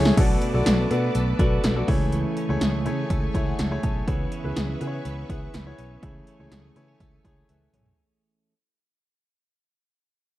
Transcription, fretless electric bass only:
Already playing: C#2
0.17 B1
0.54 B1
0.66 B1
0.91 B2
1.15 B1
1.39 B1
1.64 B1
1.88 C#2
2.49 C#2
2.61 C#2
2.86 C#3
3.10 C#2
3.34 C#2
3.59 C#2
3.83 B1
4.08 C#2
4.44 C#2
4.57 C#2
4.81 C#3
5.05 C#2
5.30 C#2
5.54 C#2
5.79 B1
6.03 C#2
6.40 C#2
6.51 C#2
6.76 C#3
7.00 C#2
7.25 C#2
7.49 C#2
7.73 B1

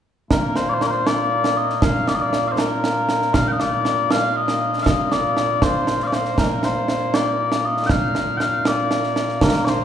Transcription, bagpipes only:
0.31 A#2 A#3 F4 A#4
0.56 C5
0.69 D5
0.73 C5
0.82 A#4 D5
0.90 C5
1.07 D5
1.57 D#5
1.82 F5
2.08 D5
2.15 D#5
2.21 D5
2.48 C5 F5
2.58 A#4
3.34 F5
3.48 G5
3.52 D#5
3.60 D5
4.11 F5
4.36 D#5
4.82 F5
4.87 D#5
5.12 D5
5.63 C5
6.04 D5 F5
6.14 C5
6.38 A#4
6.64 C5
7.14 D5
7.65 D#5
7.86 G5
7.90 F5
8.37 G5
8.42 F5
8.67 D5
9.43 A#4
9.65 C5 D5

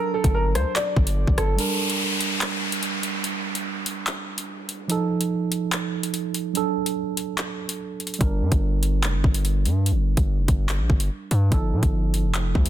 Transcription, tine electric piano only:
Already playing: F#3 D4 A4
1.57 G3 D4 A#4
4.88 F3 D#4 A4
6.53 F#3 D4 A4
8.19 G3 D4 A#4
11.50 F3 D#4 A4

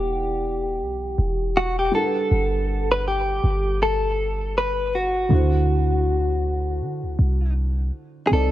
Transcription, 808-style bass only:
Already playing: E1
0.81 B1
1.18 E1
2.31 G1
3.44 G1
5.31 D2
6.81 D3
7.03 D2
7.19 C2
8.31 C2

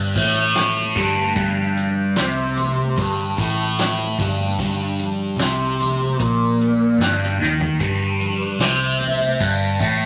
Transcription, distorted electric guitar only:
Already playing: G2
0.15 A2
0.95 G2
1.34 G2
2.16 C3
2.97 G2
3.37 A2
4.18 G2
4.59 G2
5.38 C3
6.19 A#2
7.00 G2
7.40 D#3
7.80 G2
8.60 C3
9.40 G2
9.79 A2

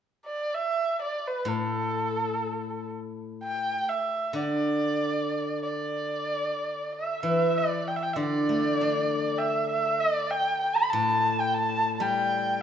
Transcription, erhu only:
0.26 D5
0.54 E5
1.02 D5
1.27 B4
1.48 A4
3.43 G5
3.89 E5
4.35 D5
5.63 D5
6.92 E5
7.22 E5
7.57 D5
7.88 G5
7.96 E5
8.02 G5
8.13 D5 E5
9.37 E5 G5
9.70 E5
10.00 D5
10.31 G5
10.62 G5
10.76 B5
10.90 A5
11.40 G5
11.54 A5
11.95 A5
12.01 G5

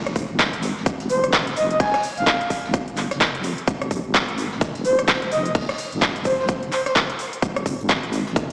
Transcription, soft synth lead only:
1.10 C5
1.57 D#5
1.71 D#5
1.80 G#5
2.18 F5
2.27 F5
4.85 C5
5.32 D#5
5.45 D#5
6.25 C5
6.39 C5
6.72 C5
6.86 C5

